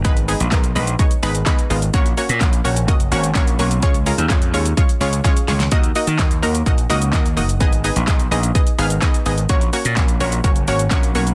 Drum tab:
HH |xxoxxxoxxxoxxxox|xxoxxxoxxxoxxxox|xxoxxxoxxxoxxxox|xxoxxxoxxxoxxxox|
SH |xxxxxxxxxxxxxxxx|xxxxxxxxxxxxxxxx|xxxxxxxxxxxxxxxx|xxxxxxxxxxxxxxxx|
CP |----x-------x---|----x-------x---|----x-----------|----x-------x---|
SD |----o-------o---|----o-------o---|----o-------o-oo|----o-------o---|
BD |o---o---o---o---|o---o---o---o---|o---o---o---o---|o---o---o---o---|

HH |xxoxxxoxxxoxxxox|xxoxxxoxxxoxxxox|
SH |xxxxxxxxxxxxxxxx|xxxxxxxxxxxxxxxx|
CP |----x-------x---|----x-------x---|
SD |----o-------o---|----o-------o---|
BD |o---o---o---o---|o---o---o---o---|